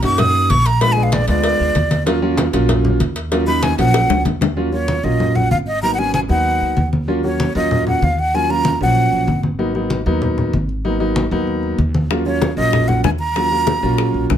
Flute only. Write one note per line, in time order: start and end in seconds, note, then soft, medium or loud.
0.04 0.21 C#6 loud
0.19 0.52 D#6 loud
0.50 0.68 C#6 loud
0.66 0.83 A#5 loud
0.82 0.94 B5 loud
0.92 1.05 G#5 loud
1.03 1.15 F5 medium
1.13 1.28 D5 medium
1.29 2.03 D5 loud
3.47 3.64 B5 loud
3.63 3.78 G#5 medium
3.79 4.22 F#5 loud
4.73 5.06 C#5 medium
5.04 5.37 D#5 medium
5.36 5.51 F#5 medium
5.51 5.57 F5 loud
5.67 5.81 D#5 medium
5.83 5.93 A#5 loud
5.94 6.00 F#5 medium
5.99 6.14 G#5 medium
6.14 6.20 G#5 medium
6.30 6.88 F#5 loud
7.25 7.53 C#5 medium
7.56 7.85 D#5 medium
7.88 8.05 F#5 medium
8.04 8.21 F5 medium
8.19 8.36 F#5 loud
8.35 8.52 G#5 loud
8.50 8.81 A#5 loud
8.82 9.40 F#5 loud
12.26 12.55 C#5 medium
12.57 12.89 D#5 loud
12.88 13.03 F#5 medium
13.04 13.10 G#5 medium
13.19 14.25 A#5 loud